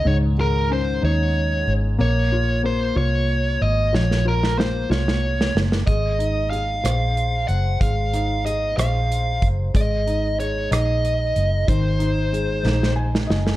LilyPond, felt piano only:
\new Staff \with { instrumentName = "Felt piano" } { \time 6/8 \key bes \minor \tempo 4. = 62 << { r2. | r2. | r2. | r2. |
r2. | r2. | r2 aes''8 ees''8 | } \\ { <aes, ees'>8 aes8 des'8 ees'4. | bes8 f'8 bes8 f'4. | f8 f'8 bes8 f'4. | aes8 ees'8 aes'8 c''4. |
aes8 ees'8 aes'8 c''4. | aes8 ees'8 aes8 ees'4. | ees8 ees'8 aes8 ees'4. | } >> }